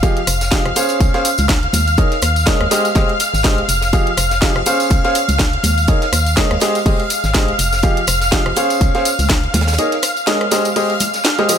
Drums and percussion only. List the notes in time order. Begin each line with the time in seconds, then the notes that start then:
0.03 kick, closed hi-hat, tambourine
0.17 closed hi-hat
0.27 cross-stick, closed hi-hat, open hi-hat, tambourine
0.41 snare, closed hi-hat, tambourine
0.51 kick, snare, closed hi-hat, tambourine
0.66 cross-stick, closed hi-hat
0.76 closed hi-hat, open hi-hat, tambourine
0.89 closed hi-hat, tambourine
1.00 kick, closed hi-hat, tambourine
1.14 snare, closed hi-hat
1.25 closed hi-hat, open hi-hat, tambourine
1.38 open hi-hat, tambourine, high conga
1.48 kick, snare, closed hi-hat, tambourine
1.63 closed hi-hat
1.73 closed hi-hat, open hi-hat, tambourine, high conga
1.87 closed hi-hat, tambourine
1.97 kick, closed hi-hat, tambourine
2.12 snare, closed hi-hat
2.22 cross-stick, closed hi-hat, open hi-hat, tambourine
2.36 closed hi-hat, tambourine
2.46 kick, snare, closed hi-hat
2.61 cross-stick, closed hi-hat
2.71 snare, closed hi-hat, open hi-hat, tambourine
2.85 closed hi-hat, tambourine
2.95 kick, snare, closed hi-hat, tambourine
3.09 closed hi-hat
3.20 closed hi-hat, open hi-hat, tambourine
3.33 snare, tambourine
3.44 kick, snare, closed hi-hat, tambourine
3.58 closed hi-hat
3.69 closed hi-hat, open hi-hat, tambourine
3.82 snare, closed hi-hat, tambourine
3.93 kick, closed hi-hat, tambourine
4.07 closed hi-hat
4.17 cross-stick, closed hi-hat, open hi-hat, tambourine
4.31 snare, closed hi-hat, tambourine
4.42 kick, snare, closed hi-hat, tambourine
4.56 cross-stick, closed hi-hat
4.66 closed hi-hat, open hi-hat, tambourine
4.80 closed hi-hat, tambourine
4.90 kick, closed hi-hat, tambourine
5.04 snare, closed hi-hat
5.15 closed hi-hat, open hi-hat, tambourine
5.28 open hi-hat, tambourine, high conga
5.39 kick, snare, closed hi-hat, tambourine
5.53 closed hi-hat
5.63 closed hi-hat, open hi-hat, tambourine, high conga
5.78 closed hi-hat, tambourine
5.88 kick, closed hi-hat, tambourine
6.02 snare, closed hi-hat
6.13 cross-stick, closed hi-hat, open hi-hat, tambourine
6.26 closed hi-hat, tambourine
6.37 kick, snare, closed hi-hat
6.51 cross-stick, closed hi-hat
6.60 snare, closed hi-hat, open hi-hat, tambourine
6.75 closed hi-hat, tambourine
6.86 kick, closed hi-hat, open hi-hat, tambourine
7.00 closed hi-hat
7.10 closed hi-hat, open hi-hat, tambourine
7.24 snare, tambourine
7.34 kick, snare, closed hi-hat, tambourine
7.48 closed hi-hat
7.59 closed hi-hat, open hi-hat, tambourine
7.72 snare, closed hi-hat, tambourine
7.83 kick, closed hi-hat
7.97 closed hi-hat
8.07 cross-stick, closed hi-hat, open hi-hat, tambourine
8.21 snare, closed hi-hat, tambourine
8.32 kick, snare, closed hi-hat
8.46 cross-stick, closed hi-hat
8.56 closed hi-hat, open hi-hat, tambourine
8.70 closed hi-hat, tambourine
8.81 kick, closed hi-hat, tambourine
8.95 snare, closed hi-hat
9.05 closed hi-hat, open hi-hat, tambourine
9.19 open hi-hat, tambourine, high conga
9.29 kick, snare, closed hi-hat, tambourine
9.44 closed hi-hat
9.54 snare, closed hi-hat, open hi-hat, tambourine, high conga
9.61 snare, closed hi-hat
9.67 snare, closed hi-hat, tambourine
9.73 snare, closed hi-hat
9.78 closed hi-hat, tambourine
9.92 snare, closed hi-hat
10.02 cross-stick, closed hi-hat, open hi-hat, tambourine
10.17 closed hi-hat, tambourine
10.27 snare, closed hi-hat, tambourine
10.41 cross-stick, closed hi-hat
10.51 snare, closed hi-hat, open hi-hat, tambourine
10.65 closed hi-hat, tambourine
10.76 closed hi-hat, open hi-hat, tambourine
10.90 closed hi-hat
11.00 closed hi-hat, open hi-hat, tambourine, high conga
11.14 snare, closed hi-hat, tambourine
11.24 snare, closed hi-hat, tambourine
11.38 snare, closed hi-hat
11.49 closed hi-hat, open hi-hat, tambourine